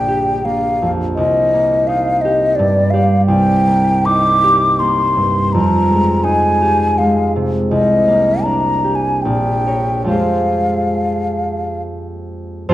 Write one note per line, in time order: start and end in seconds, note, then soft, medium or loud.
0.00 1.19 A#1 soft
0.00 0.44 A#3 soft
0.00 1.19 D4 soft
0.00 1.18 F4 soft
0.00 0.46 G5 medium
0.08 2.24 G4 soft
0.45 1.53 A#3 soft
0.45 0.91 F5 medium
0.82 1.19 F2 soft
1.15 2.60 C2 soft
1.15 1.89 D#5 medium
1.54 3.66 A#3 soft
1.87 2.60 D#4 soft
1.87 2.23 F5 medium
2.22 2.92 G4 soft
2.22 2.57 D#5 medium
2.55 3.31 G2 soft
2.55 2.92 D5 medium
2.90 4.42 G4 soft
2.90 3.31 D5 soft
2.90 3.26 F5 medium
3.26 5.56 C2 soft
3.26 4.07 G5 medium
3.67 4.79 A#3 soft
4.05 6.23 D#4 soft
4.05 4.81 D6 medium
4.44 6.61 G4 soft
4.79 5.55 A#3 soft
4.79 5.54 C6 medium
5.17 5.55 G2 soft
5.53 7.73 F2 soft
5.53 6.25 A#5 medium
5.90 6.98 G#3 soft
6.24 9.26 D#4 soft
6.24 7.00 G#5 medium
6.62 8.83 G4 soft
6.98 7.73 G#3 soft
6.98 7.34 F5 medium
7.36 7.73 C3 soft
7.71 9.26 C2 soft
7.71 8.45 D#5 medium
8.08 10.12 A#3 soft
8.43 9.27 D4 soft
8.43 8.97 A#5 medium
8.84 10.06 G4 soft
8.95 9.24 G#5 medium
9.22 10.12 A#1 soft
9.22 10.07 G5 medium
9.66 10.12 A#4 soft
9.66 10.13 C#5 soft
10.04 12.68 F2 soft
10.04 12.74 G#3 soft
10.04 12.69 F4 soft
10.04 12.74 G4 soft
10.04 12.68 C5 soft
10.04 11.82 F5 medium
12.69 12.74 F2 medium
12.69 12.74 F4 medium
12.69 12.74 C5 loud